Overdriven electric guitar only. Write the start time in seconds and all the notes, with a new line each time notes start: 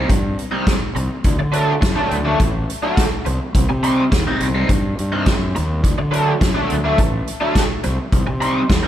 0.09 muted overdriven electric guitar stroke
0.51 C3 G3 C4 D#4
0.96 muted overdriven electric guitar stroke
1.39 muted overdriven electric guitar stroke
1.52 D3 F#3 A3 D4
1.81 muted overdriven electric guitar stroke
1.96 D3 F#3 A3 D4
2.25 D3 F#3 A3 D4
2.39 muted overdriven electric guitar stroke
2.82 D3 F#3 A3 D4
3.25 muted overdriven electric guitar stroke
3.69 muted overdriven electric guitar stroke
3.83 C3 G3 C4 D#4
4.12 muted overdriven electric guitar stroke
4.27 C3 G3 C4 D#4
4.55 C3 G3 C4 D#4
4.69 muted overdriven electric guitar stroke
5.12 C3 G3 C4 D#4
5.55 muted overdriven electric guitar stroke
5.98 muted overdriven electric guitar stroke
6.11 D3 F#3 A3 D4
6.41 muted overdriven electric guitar stroke
6.55 D3 F#3 A3 D4
6.84 D3 F#3 A3 D4
6.98 muted overdriven electric guitar stroke
7.40 D3 F#3 A3 D4
7.84 muted overdriven electric guitar stroke
8.27 muted overdriven electric guitar stroke
8.41 C3 G3 C4 D#4
8.70 muted overdriven electric guitar stroke
8.83 C3 G3 C4 D#4